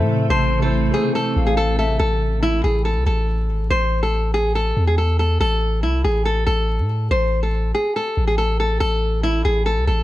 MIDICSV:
0, 0, Header, 1, 6, 480
1, 0, Start_track
1, 0, Key_signature, 0, "minor"
1, 0, Tempo, 425532
1, 337, Time_signature, 4, 2, 24, 8
1, 11317, End_track
2, 0, Start_track
2, 0, Title_t, "Soft synth lead"
2, 0, Program_c, 0, 80
2, 0, Note_on_c, 0, 76, 92
2, 294, Note_off_c, 0, 76, 0
2, 337, Note_on_c, 0, 81, 95
2, 788, Note_off_c, 0, 81, 0
2, 1537, Note_on_c, 0, 77, 93
2, 1989, Note_off_c, 0, 77, 0
2, 2015, Note_on_c, 0, 76, 89
2, 2244, Note_off_c, 0, 76, 0
2, 11317, End_track
3, 0, Start_track
3, 0, Title_t, "Nylon-string guitar"
3, 0, Program_c, 1, 24
3, 0, Note_on_c, 1, 69, 75
3, 292, Note_off_c, 1, 69, 0
3, 341, Note_on_c, 1, 72, 107
3, 678, Note_off_c, 1, 72, 0
3, 701, Note_on_c, 1, 69, 70
3, 1038, Note_off_c, 1, 69, 0
3, 1057, Note_on_c, 1, 68, 85
3, 1267, Note_off_c, 1, 68, 0
3, 1298, Note_on_c, 1, 69, 84
3, 1636, Note_off_c, 1, 69, 0
3, 1654, Note_on_c, 1, 68, 71
3, 1760, Note_off_c, 1, 68, 0
3, 1772, Note_on_c, 1, 69, 82
3, 1985, Note_off_c, 1, 69, 0
3, 2016, Note_on_c, 1, 69, 77
3, 2227, Note_off_c, 1, 69, 0
3, 2250, Note_on_c, 1, 69, 99
3, 2704, Note_off_c, 1, 69, 0
3, 2736, Note_on_c, 1, 64, 98
3, 2947, Note_off_c, 1, 64, 0
3, 2977, Note_on_c, 1, 68, 75
3, 3187, Note_off_c, 1, 68, 0
3, 3214, Note_on_c, 1, 69, 89
3, 3426, Note_off_c, 1, 69, 0
3, 3457, Note_on_c, 1, 69, 82
3, 4134, Note_off_c, 1, 69, 0
3, 4179, Note_on_c, 1, 72, 101
3, 4517, Note_off_c, 1, 72, 0
3, 4543, Note_on_c, 1, 69, 70
3, 4879, Note_off_c, 1, 69, 0
3, 4895, Note_on_c, 1, 68, 87
3, 5106, Note_off_c, 1, 68, 0
3, 5136, Note_on_c, 1, 69, 86
3, 5475, Note_off_c, 1, 69, 0
3, 5499, Note_on_c, 1, 68, 70
3, 5603, Note_off_c, 1, 68, 0
3, 5617, Note_on_c, 1, 69, 77
3, 5828, Note_off_c, 1, 69, 0
3, 5858, Note_on_c, 1, 69, 81
3, 6068, Note_off_c, 1, 69, 0
3, 6097, Note_on_c, 1, 69, 104
3, 6548, Note_off_c, 1, 69, 0
3, 6575, Note_on_c, 1, 64, 82
3, 6786, Note_off_c, 1, 64, 0
3, 6818, Note_on_c, 1, 68, 76
3, 7028, Note_off_c, 1, 68, 0
3, 7054, Note_on_c, 1, 69, 83
3, 7266, Note_off_c, 1, 69, 0
3, 7292, Note_on_c, 1, 69, 77
3, 7972, Note_off_c, 1, 69, 0
3, 8020, Note_on_c, 1, 72, 103
3, 8357, Note_off_c, 1, 72, 0
3, 8379, Note_on_c, 1, 69, 66
3, 8716, Note_off_c, 1, 69, 0
3, 8737, Note_on_c, 1, 68, 79
3, 8947, Note_off_c, 1, 68, 0
3, 8978, Note_on_c, 1, 69, 79
3, 9316, Note_off_c, 1, 69, 0
3, 9334, Note_on_c, 1, 68, 68
3, 9440, Note_off_c, 1, 68, 0
3, 9452, Note_on_c, 1, 69, 77
3, 9665, Note_off_c, 1, 69, 0
3, 9699, Note_on_c, 1, 69, 72
3, 9908, Note_off_c, 1, 69, 0
3, 9931, Note_on_c, 1, 69, 102
3, 10385, Note_off_c, 1, 69, 0
3, 10416, Note_on_c, 1, 64, 97
3, 10627, Note_off_c, 1, 64, 0
3, 10657, Note_on_c, 1, 68, 78
3, 10867, Note_off_c, 1, 68, 0
3, 10894, Note_on_c, 1, 69, 91
3, 11105, Note_off_c, 1, 69, 0
3, 11138, Note_on_c, 1, 69, 82
3, 11317, Note_off_c, 1, 69, 0
3, 11317, End_track
4, 0, Start_track
4, 0, Title_t, "Grand piano"
4, 0, Program_c, 2, 0
4, 0, Control_c, 2, 64, 127
4, 0, Note_on_c, 2, 57, 78
4, 0, Note_on_c, 2, 64, 75
4, 0, Note_on_c, 2, 72, 91
4, 472, Note_off_c, 2, 57, 0
4, 485, Note_off_c, 2, 64, 0
4, 498, Note_off_c, 2, 72, 0
4, 671, Note_on_c, 2, 57, 78
4, 696, Note_on_c, 2, 64, 70
4, 722, Note_on_c, 2, 72, 91
4, 1010, Note_off_c, 2, 57, 0
4, 1022, Note_off_c, 2, 64, 0
4, 1027, Note_on_c, 2, 57, 78
4, 1036, Note_off_c, 2, 72, 0
4, 1053, Note_on_c, 2, 52, 69
4, 1078, Note_on_c, 2, 72, 80
4, 1911, Note_off_c, 2, 57, 0
4, 1924, Note_off_c, 2, 52, 0
4, 1936, Note_off_c, 2, 72, 0
4, 2271, Control_c, 2, 64, 0
4, 11317, End_track
5, 0, Start_track
5, 0, Title_t, "Ambient pad"
5, 0, Program_c, 3, 92
5, 0, Note_on_c, 3, 48, 83
5, 0, Note_on_c, 3, 52, 77
5, 0, Note_on_c, 3, 57, 76
5, 0, Note_on_c, 3, 60, 96
5, 2212, Note_off_c, 3, 52, 0
5, 2219, Note_off_c, 3, 48, 0
5, 2219, Note_off_c, 3, 57, 0
5, 2219, Note_off_c, 3, 60, 0
5, 11317, End_track
6, 0, Start_track
6, 0, Title_t, "808-style bass"
6, 0, Program_c, 4, 38
6, 0, Note_on_c, 4, 45, 105
6, 320, Note_off_c, 4, 45, 0
6, 339, Note_on_c, 4, 33, 113
6, 1029, Note_off_c, 4, 33, 0
6, 1538, Note_on_c, 4, 33, 109
6, 2229, Note_off_c, 4, 33, 0
6, 2257, Note_on_c, 4, 33, 112
6, 2948, Note_off_c, 4, 33, 0
6, 2977, Note_on_c, 4, 33, 100
6, 3337, Note_on_c, 4, 36, 97
6, 3353, Note_off_c, 4, 33, 0
6, 3451, Note_off_c, 4, 36, 0
6, 3457, Note_on_c, 4, 33, 106
6, 3936, Note_on_c, 4, 32, 100
6, 3953, Note_off_c, 4, 33, 0
6, 4056, Note_on_c, 4, 33, 95
6, 4073, Note_off_c, 4, 32, 0
6, 4171, Note_off_c, 4, 33, 0
6, 4177, Note_on_c, 4, 33, 110
6, 5332, Note_off_c, 4, 33, 0
6, 5377, Note_on_c, 4, 40, 103
6, 6068, Note_off_c, 4, 40, 0
6, 6096, Note_on_c, 4, 33, 104
6, 6577, Note_on_c, 4, 36, 99
6, 6594, Note_off_c, 4, 33, 0
6, 6805, Note_off_c, 4, 36, 0
6, 6817, Note_on_c, 4, 33, 103
6, 7278, Note_off_c, 4, 33, 0
6, 7298, Note_on_c, 4, 33, 108
6, 7658, Note_on_c, 4, 45, 97
6, 7675, Note_off_c, 4, 33, 0
6, 8000, Note_off_c, 4, 45, 0
6, 8019, Note_on_c, 4, 33, 112
6, 8709, Note_off_c, 4, 33, 0
6, 9218, Note_on_c, 4, 33, 106
6, 9909, Note_off_c, 4, 33, 0
6, 9938, Note_on_c, 4, 33, 109
6, 10629, Note_off_c, 4, 33, 0
6, 10658, Note_on_c, 4, 33, 103
6, 11018, Note_on_c, 4, 36, 98
6, 11035, Note_off_c, 4, 33, 0
6, 11132, Note_off_c, 4, 36, 0
6, 11138, Note_on_c, 4, 33, 109
6, 11317, Note_off_c, 4, 33, 0
6, 11317, End_track
0, 0, End_of_file